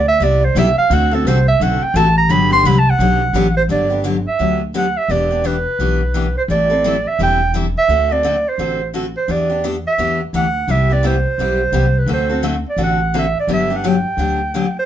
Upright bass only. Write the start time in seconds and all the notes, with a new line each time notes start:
Already playing: D2
0.20 C2
0.55 B1
0.90 D2
1.25 C2
1.60 B1
1.81 muted upright bass stroke
1.94 A1
2.29 G1
2.64 C2
2.99 B1
3.33 A1
3.69 G1
4.39 D2
5.08 E1
5.79 B1
6.48 A1
7.19 E1
7.88 D2
8.58 A1
9.28 E2
9.98 E2
10.33 D2
10.68 C2
11.38 B1
11.72 C2
12.06 D2
12.77 A1
13.47 G1
14.17 D2